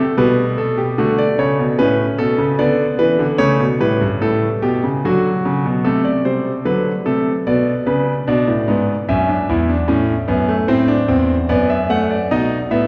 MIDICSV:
0, 0, Header, 1, 2, 480
1, 0, Start_track
1, 0, Tempo, 808625
1, 582, Time_signature, 3, 2, 24, 8
1, 7641, End_track
2, 0, Start_track
2, 0, Title_t, "Grand piano"
2, 0, Program_c, 0, 0
2, 0, Note_on_c, 0, 57, 72
2, 0, Note_on_c, 0, 69, 64
2, 88, Note_off_c, 0, 57, 0
2, 103, Note_off_c, 0, 69, 0
2, 104, Note_on_c, 0, 55, 70
2, 104, Note_on_c, 0, 71, 70
2, 106, Note_on_c, 0, 47, 86
2, 252, Note_off_c, 0, 71, 0
2, 344, Note_on_c, 0, 69, 64
2, 459, Note_off_c, 0, 69, 0
2, 461, Note_on_c, 0, 67, 66
2, 568, Note_off_c, 0, 55, 0
2, 569, Note_off_c, 0, 47, 0
2, 578, Note_off_c, 0, 67, 0
2, 583, Note_on_c, 0, 50, 72
2, 583, Note_on_c, 0, 57, 69
2, 586, Note_on_c, 0, 66, 61
2, 701, Note_off_c, 0, 66, 0
2, 704, Note_on_c, 0, 74, 78
2, 731, Note_off_c, 0, 50, 0
2, 819, Note_off_c, 0, 74, 0
2, 823, Note_on_c, 0, 49, 62
2, 825, Note_on_c, 0, 73, 71
2, 939, Note_off_c, 0, 49, 0
2, 946, Note_on_c, 0, 47, 59
2, 972, Note_off_c, 0, 73, 0
2, 1048, Note_off_c, 0, 57, 0
2, 1060, Note_off_c, 0, 47, 0
2, 1060, Note_on_c, 0, 71, 80
2, 1061, Note_on_c, 0, 61, 69
2, 1062, Note_on_c, 0, 45, 68
2, 1209, Note_off_c, 0, 71, 0
2, 1211, Note_off_c, 0, 45, 0
2, 1297, Note_on_c, 0, 69, 77
2, 1300, Note_on_c, 0, 47, 59
2, 1414, Note_on_c, 0, 49, 63
2, 1417, Note_off_c, 0, 47, 0
2, 1447, Note_off_c, 0, 69, 0
2, 1526, Note_off_c, 0, 61, 0
2, 1534, Note_off_c, 0, 49, 0
2, 1536, Note_on_c, 0, 59, 69
2, 1536, Note_on_c, 0, 74, 82
2, 1537, Note_on_c, 0, 50, 69
2, 1687, Note_off_c, 0, 50, 0
2, 1687, Note_off_c, 0, 74, 0
2, 1774, Note_on_c, 0, 71, 78
2, 1775, Note_on_c, 0, 52, 70
2, 1894, Note_on_c, 0, 50, 69
2, 1895, Note_off_c, 0, 52, 0
2, 1926, Note_off_c, 0, 71, 0
2, 2006, Note_off_c, 0, 59, 0
2, 2009, Note_on_c, 0, 73, 87
2, 2010, Note_on_c, 0, 49, 77
2, 2010, Note_on_c, 0, 57, 64
2, 2015, Note_off_c, 0, 50, 0
2, 2133, Note_off_c, 0, 49, 0
2, 2135, Note_on_c, 0, 47, 62
2, 2162, Note_off_c, 0, 73, 0
2, 2163, Note_off_c, 0, 57, 0
2, 2256, Note_off_c, 0, 47, 0
2, 2257, Note_on_c, 0, 45, 69
2, 2259, Note_on_c, 0, 55, 60
2, 2259, Note_on_c, 0, 71, 78
2, 2377, Note_off_c, 0, 45, 0
2, 2380, Note_on_c, 0, 43, 61
2, 2410, Note_off_c, 0, 71, 0
2, 2499, Note_off_c, 0, 43, 0
2, 2501, Note_on_c, 0, 45, 66
2, 2503, Note_on_c, 0, 69, 75
2, 2651, Note_off_c, 0, 45, 0
2, 2652, Note_off_c, 0, 69, 0
2, 2745, Note_on_c, 0, 67, 75
2, 2747, Note_on_c, 0, 47, 63
2, 2862, Note_off_c, 0, 47, 0
2, 2870, Note_on_c, 0, 49, 60
2, 2894, Note_off_c, 0, 67, 0
2, 2961, Note_off_c, 0, 55, 0
2, 2984, Note_off_c, 0, 49, 0
2, 2997, Note_on_c, 0, 50, 63
2, 2998, Note_on_c, 0, 54, 67
2, 3000, Note_on_c, 0, 66, 73
2, 3143, Note_off_c, 0, 50, 0
2, 3237, Note_on_c, 0, 49, 66
2, 3349, Note_off_c, 0, 49, 0
2, 3357, Note_on_c, 0, 47, 61
2, 3460, Note_off_c, 0, 54, 0
2, 3461, Note_off_c, 0, 66, 0
2, 3469, Note_off_c, 0, 47, 0
2, 3469, Note_on_c, 0, 69, 69
2, 3471, Note_on_c, 0, 48, 64
2, 3473, Note_on_c, 0, 57, 61
2, 3586, Note_off_c, 0, 69, 0
2, 3589, Note_on_c, 0, 74, 59
2, 3621, Note_off_c, 0, 57, 0
2, 3706, Note_off_c, 0, 74, 0
2, 3710, Note_on_c, 0, 72, 62
2, 3712, Note_on_c, 0, 55, 54
2, 3860, Note_off_c, 0, 72, 0
2, 3861, Note_off_c, 0, 55, 0
2, 3938, Note_off_c, 0, 48, 0
2, 3949, Note_on_c, 0, 50, 61
2, 3950, Note_on_c, 0, 71, 64
2, 3951, Note_on_c, 0, 54, 58
2, 4099, Note_off_c, 0, 50, 0
2, 4100, Note_off_c, 0, 54, 0
2, 4100, Note_off_c, 0, 71, 0
2, 4188, Note_on_c, 0, 57, 52
2, 4189, Note_on_c, 0, 69, 64
2, 4191, Note_on_c, 0, 48, 55
2, 4337, Note_off_c, 0, 57, 0
2, 4339, Note_off_c, 0, 69, 0
2, 4340, Note_off_c, 0, 48, 0
2, 4433, Note_on_c, 0, 74, 69
2, 4434, Note_on_c, 0, 47, 63
2, 4435, Note_on_c, 0, 59, 59
2, 4581, Note_off_c, 0, 74, 0
2, 4582, Note_off_c, 0, 47, 0
2, 4669, Note_on_c, 0, 71, 60
2, 4670, Note_on_c, 0, 49, 61
2, 4819, Note_off_c, 0, 71, 0
2, 4820, Note_off_c, 0, 49, 0
2, 4900, Note_off_c, 0, 59, 0
2, 4912, Note_on_c, 0, 62, 66
2, 4913, Note_on_c, 0, 74, 63
2, 4914, Note_on_c, 0, 47, 76
2, 5030, Note_off_c, 0, 47, 0
2, 5032, Note_on_c, 0, 45, 62
2, 5061, Note_off_c, 0, 62, 0
2, 5149, Note_off_c, 0, 45, 0
2, 5151, Note_on_c, 0, 44, 70
2, 5153, Note_on_c, 0, 59, 63
2, 5300, Note_off_c, 0, 44, 0
2, 5301, Note_off_c, 0, 59, 0
2, 5379, Note_off_c, 0, 74, 0
2, 5393, Note_on_c, 0, 76, 66
2, 5394, Note_on_c, 0, 61, 63
2, 5395, Note_on_c, 0, 42, 72
2, 5509, Note_off_c, 0, 61, 0
2, 5512, Note_on_c, 0, 62, 60
2, 5542, Note_off_c, 0, 42, 0
2, 5628, Note_off_c, 0, 62, 0
2, 5635, Note_on_c, 0, 40, 71
2, 5637, Note_on_c, 0, 64, 59
2, 5750, Note_off_c, 0, 64, 0
2, 5753, Note_on_c, 0, 62, 61
2, 5781, Note_off_c, 0, 40, 0
2, 5863, Note_on_c, 0, 61, 67
2, 5865, Note_on_c, 0, 45, 77
2, 5867, Note_off_c, 0, 62, 0
2, 6013, Note_off_c, 0, 61, 0
2, 6014, Note_off_c, 0, 45, 0
2, 6101, Note_on_c, 0, 59, 68
2, 6103, Note_on_c, 0, 42, 73
2, 6220, Note_off_c, 0, 59, 0
2, 6223, Note_on_c, 0, 57, 69
2, 6252, Note_off_c, 0, 42, 0
2, 6322, Note_off_c, 0, 76, 0
2, 6340, Note_off_c, 0, 57, 0
2, 6340, Note_on_c, 0, 72, 73
2, 6341, Note_on_c, 0, 45, 72
2, 6342, Note_on_c, 0, 60, 78
2, 6459, Note_on_c, 0, 62, 78
2, 6460, Note_off_c, 0, 60, 0
2, 6491, Note_off_c, 0, 45, 0
2, 6578, Note_off_c, 0, 62, 0
2, 6580, Note_on_c, 0, 60, 73
2, 6582, Note_on_c, 0, 40, 63
2, 6730, Note_off_c, 0, 60, 0
2, 6731, Note_off_c, 0, 40, 0
2, 6807, Note_off_c, 0, 72, 0
2, 6821, Note_on_c, 0, 74, 70
2, 6823, Note_on_c, 0, 42, 65
2, 6823, Note_on_c, 0, 59, 85
2, 6939, Note_off_c, 0, 74, 0
2, 6943, Note_on_c, 0, 76, 66
2, 6972, Note_off_c, 0, 59, 0
2, 7060, Note_off_c, 0, 76, 0
2, 7062, Note_on_c, 0, 57, 73
2, 7064, Note_on_c, 0, 78, 73
2, 7180, Note_off_c, 0, 78, 0
2, 7184, Note_on_c, 0, 74, 66
2, 7211, Note_off_c, 0, 57, 0
2, 7289, Note_off_c, 0, 42, 0
2, 7301, Note_off_c, 0, 74, 0
2, 7308, Note_on_c, 0, 75, 68
2, 7309, Note_on_c, 0, 47, 68
2, 7309, Note_on_c, 0, 63, 76
2, 7456, Note_off_c, 0, 75, 0
2, 7457, Note_off_c, 0, 47, 0
2, 7457, Note_off_c, 0, 63, 0
2, 7543, Note_on_c, 0, 45, 65
2, 7545, Note_on_c, 0, 59, 74
2, 7545, Note_on_c, 0, 76, 65
2, 7641, Note_off_c, 0, 45, 0
2, 7641, Note_off_c, 0, 59, 0
2, 7641, Note_off_c, 0, 76, 0
2, 7641, End_track
0, 0, End_of_file